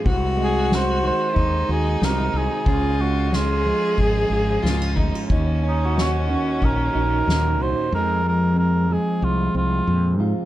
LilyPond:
<<
  \new Staff \with { instrumentName = "Cor anglais" } { \time 4/4 \key ees \dorian \tempo 4 = 92 r8 aes'8 c''8 c''4 aes'8 bes'8 aes'8~ | aes'8 ges'8 f'4 aes'4. r8 | r8 ees'8 ges'4 bes'4. c''8 | bes'8 bes'8 bes'8 aes'8 f'8 f'4 r8 | }
  \new Staff \with { instrumentName = "Violin" } { \time 4/4 \key ees \dorian ges'2 ees'2 | f'4 aes'2 f'8 ees'8 | des'1 | r1 | }
  \new Staff \with { instrumentName = "Clean electric guitar" } { \time 4/4 \key ees \dorian r1 | r1 | r8 des'16 ges'4.~ ges'16 ees'4.~ | ees'8 r2. f'8 | }
  \new Staff \with { instrumentName = "Steel-string acoustic guitar" } { \time 4/4 \key ees \dorian << { <aes c'>8 aes8 c'8 aes4 ges'8 c'8 ges'8 | des'8 aes8 des'8 aes4 f'8 bes16 des'16 ees'16 f'16 | ees'8 des'8 ees'8 des'4 ges'8 ees'8 ges'8 | <f aes c' aes'>8 aes8 c'8 aes4 c'4. | } \\ { c4. ees4. c4 | des4. f4. aes,4 | ees,4. ees4. bes,4 | f,4. f4. bes,8 c8 | } >> }
  \new Staff \with { instrumentName = "Fretless electric bass" } { \clef bass \time 4/4 \key ees \dorian c,2 ees,8 ees,8 c,8 c,16 r16 | des,2 aes,,8 aes,,8 des,8 d,16 r16 | ees,2 bes,,8 bes,,8 ees,8 c,16 r16 | f,2 c,8 c,8 f,8 aes,16 r16 | }
  \new DrumStaff \with { instrumentName = "Drums" } \drummode { \time 4/4 <bd cymr>8 cymr8 <cymr sn>8 cymr8 <bd cymr>8 cymr8 <cymr sn>8 cymr8 | <bd cymr>8 cymr8 <cymr sn>8 cymr8 <bd cymr>8 cymr8 <cymr sn>8 <bd cymr>8 | <bd cymr>8 cymr8 <cymr sn>8 cymr8 <bd cymr>8 cymr8 <cymr sn>8 cymr8 | r4 r4 r4 r4 | }
>>